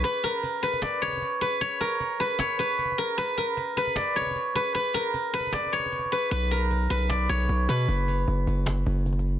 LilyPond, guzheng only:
\new Staff \with { instrumentName = "Guzheng" } { \time 4/4 \key b \minor \tempo 4 = 153 b'8 ais'8 r8 b'8 d''8 cis''4 b'8 | cis''8 ais'8 r8 b'8 cis''8 b'4 ais'8 | b'8 ais'8 r8 b'8 d''8 cis''4 b'8 | b'8 ais'8 r8 b'8 d''8 cis''4 b'8 |
b'8 ais'8 r8 b'8 d''8 cis''4 b'8 | r1 | }